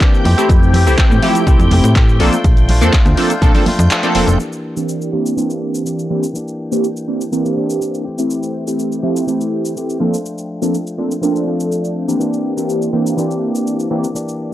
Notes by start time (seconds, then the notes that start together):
Already playing: E3 A#3 C4 D4 G4 G5 G6
0.00 E3 A#3 D4 G4, kick, clap, closed hi-hat, shaker
0.13 tambourine, shaker
0.24 F2 E3 A3 C4 G4, open hi-hat, tambourine, high conga
0.37 A3 C4 E4 G4, closed hi-hat, tambourine, shaker
0.49 F2, kick, closed hi-hat, tambourine, shaker
0.62 tambourine, shaker
0.73 E3 A3 C4 G4, open hi-hat, tambourine, low conga
0.86 C2 A3 C4 E4 G4, tambourine, shaker
0.97 E3 A3 C4 G4, kick, clap, closed hi-hat, shaker
1.10 A2, tambourine, high conga, shaker
1.22 E3 F3 A3 C4 E4 G4, open hi-hat, tambourine
1.35 A3 C4 G4, closed hi-hat, tambourine, shaker
1.46 C2 E3 A3 C4 E4 G4, kick, closed hi-hat, tambourine, shaker
1.59 F2 A3 C4 G4, closed hi-hat, tambourine, low conga, shaker
1.71 F1 E3 A3 C4 G4, open hi-hat, tambourine, high conga, low conga
1.84 A2, closed hi-hat, tambourine, shaker
1.95 E3 A3 C4 G4, kick, clap, closed hi-hat, tambourine, shaker
2.08 tambourine, shaker
2.19 A#1 F3 A3 A#3 C4 D4 F4 A4, open hi-hat, tambourine, high conga
2.33 closed hi-hat, tambourine, shaker
2.44 A#1, kick, closed hi-hat, tambourine, shaker
2.57 closed hi-hat, tambourine, shaker
2.68 F3 A3 D4 F4, open hi-hat, tambourine, low conga
2.80 F2 F3 A#3 C4 D4 A4, closed hi-hat, tambourine, shaker
2.92 F3 A3 D4 F4, kick, clap, closed hi-hat, tambourine, shaker
3.06 D2, closed hi-hat, tambourine, high conga, shaker
3.17 F3 A3 A#3 C4 D4 F4 A4, open hi-hat, tambourine
3.29 A3 D4 F4, closed hi-hat, tambourine, shaker
3.41 A#1 F3 A3 A#3 C4 D4 A4, kick, closed hi-hat, tambourine, shaker
3.54 F3 A3 A#3 C4 D4 F4 A4, open hi-hat, tambourine, low conga, shaker
3.66 F3 A3 D4 F4, open hi-hat, tambourine, high conga, low conga
3.79 F2, closed hi-hat, tambourine, shaker
3.90 F3 A3 D4 F4, clap, closed hi-hat, tambourine, shaker
4.03 F3 A#3 C4 D4 A4, closed hi-hat, tambourine, shaker
4.15 F1 F3 A#3 C4 D4 A4, open hi-hat, tambourine, high conga
4.27 F1 A3 D4 F4, closed hi-hat, tambourine, shaker
4.39 E3 A#3 D4 G4 G5 G6, shaker
4.53 shaker
4.76 E3 A#3 C4 D4 G4, shaker
4.89 shaker
5.01 shaker
5.12 E3 A#3 C4 D4 G4
5.26 shaker
5.36 E3 A#3 C4 D4 G4, shaker
5.50 shaker
5.75 shaker
5.85 E3 A#3 D4 G4, shaker
5.99 shaker
6.10 E3 A#3 C4 D4 G4
6.23 shaker
6.33 E3 A#3 D4 G4, shaker
6.48 shaker
6.72 E3 A#3 C4 D4 G4, shaker
6.84 shaker
6.97 shaker
7.08 E3 A#3 C4 D4 G4
7.21 shaker
7.32 E3 A#3 C4 D4 G4, shaker
7.45 E3 A#3 C4 D4 G4, shaker
7.57 E3 A#3 C4 D4 G4
7.70 shaker
7.80 E3 A#3 D4 G4, shaker
7.94 shaker
8.05 E3 A3 C4 G4
8.18 A3 C4 E4 G4, shaker
8.30 shaker
8.43 shaker
8.67 A3 C4 E4 G4, shaker
8.79 shaker
8.92 shaker
9.02 F3 A3 C4 E4 G4
9.16 shaker
9.27 E3 A3 C4 E4 G4, shaker
9.41 shaker
9.65 shaker
9.76 E3 A3 C4 G4, shaker
9.90 shaker
10.00 F3 A3 A#3 C4 D4 F4 A4
10.14 shaker
10.26 shaker
10.38 shaker
10.62 F3 A#3 C4 D4 A4, shaker
10.74 shaker
10.87 shaker
10.98 F3 A#3 C4 D4 A4
11.11 shaker
11.21 F3 A3 A#3 C4 D4 F4 A4, shaker
11.35 F3 A#3 C4 D4 A4, shaker
11.46 F3 C4 D4 A4
11.60 shaker
11.72 shaker
11.84 shaker
12.08 E3 A#3 C4 D4 G4, shaker
12.20 E3 A#3 D4 G4 D5 D6, shaker
12.33 shaker
12.57 E3 A#3 C4 D4 G4, shaker
12.70 shaker
12.82 shaker
12.93 E3 A#3 C4 D4 G4
13.07 shaker
13.17 E3 A#3 C4 D4 G4, shaker
13.31 shaker
13.55 shaker
13.67 shaker
13.80 shaker
13.90 E3 A#3 C4 D4 G4
14.04 shaker
14.15 E3 A#3 D4 G4, shaker
14.29 shaker